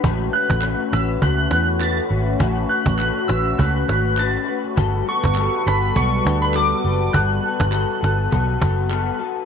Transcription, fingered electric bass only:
X:1
M:4/4
L:1/16
Q:"Swing 16ths" 1/4=102
K:A
V:1 name="Fingered electric bass" clef=bass
A,,,2 z A,,,2 z A,,,2 C,,2 E,,4 G,,,2 | A,,,2 z A,,,2 z A,,,2 C,,2 G,,,4 z2 | =G,,,2 z G,,,2 z G,,,2 B,,,2 D,,4 F,,,2 | =G,,,2 z G,,,2 z G,,,2 B,,,2 F,,,4 z2 |]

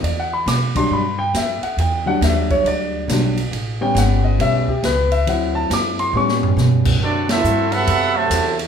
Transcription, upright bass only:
X:1
M:4/4
L:1/8
Q:"Swing" 1/4=138
K:Edor
V:1 name="Upright bass" clef=bass
E,,2 B,,2 G,,2 F,, z | E,,2 _E,,2 D,,2 B,,,2 | A,,,2 G,,,2 B,,,2 C,,2 | D,,2 F,,2 A,,2 B,,2 |
[K:D] D,2 G,,2 F,,2 E,,2 |]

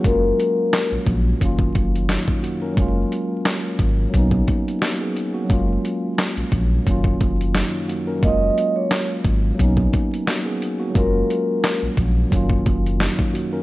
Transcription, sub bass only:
X:1
M:4/4
L:1/16
Q:"Swing 16ths" 1/4=88
K:Gb
V:1 name="Sub bass" clef=bass
G,,,2 z3 B,,, B,,,2 G,,,2 G,,,3 z3 | G,,,2 z4 A,,,2 =B,,,2 z6 | G,,,2 z3 B,,, B,,,2 G,,,2 G,,,3 z3 | G,,,2 z4 A,,,2 =B,,,2 z6 |
G,,,2 z3 B,,, B,,,2 G,,,2 G,,,3 z3 |]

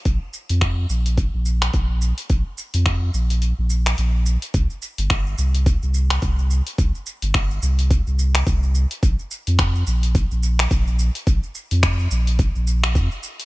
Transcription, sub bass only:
X:1
M:4/4
L:1/16
Q:"Swing 16ths" 1/4=107
K:Cphr
V:1 name="Sub bass" clef=bass
B,,, z2 F,,3 B,,,3 B,,,3 B,,,3 z | B,,, z2 F,,3 B,,,3 B,,,3 B,,,3 z | C,, z2 G,,,3 C,,3 C,,3 C,,3 z | C,, z2 G,,,3 C,,3 C,,3 C,,3 z |
B,,, z2 F,,3 B,,,3 B,,,3 B,,,3 z | B,,, z2 F,,3 B,,,3 B,,,3 F,, z3 |]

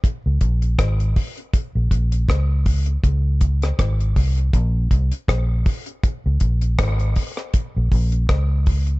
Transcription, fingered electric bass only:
X:1
M:4/4
L:1/16
Q:"Swing 16ths" 1/4=80
K:Bbm
V:1 name="Fingered electric bass" clef=bass
z D,, B,,,2 A,,,2 z3 B,,, B,,,2 D,,4 | D,,4 A,,,2 C,,2 B,,,2 C,, z B,,,2 z2 | z D,, B,,,2 A,,,2 z3 B,,, B,,,2 D,,4 |]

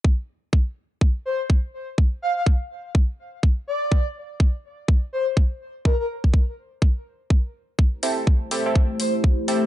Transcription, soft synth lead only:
X:1
M:4/4
L:1/16
Q:"Swing 16ths" 1/4=124
K:Aphr
V:1 name="Soft synth lead"
z8 z2 c z4 z | z2 f f z8 z2 d2- | d z8 z c z4 z | B B z12 z2 |
z8 z2 c z4 z |]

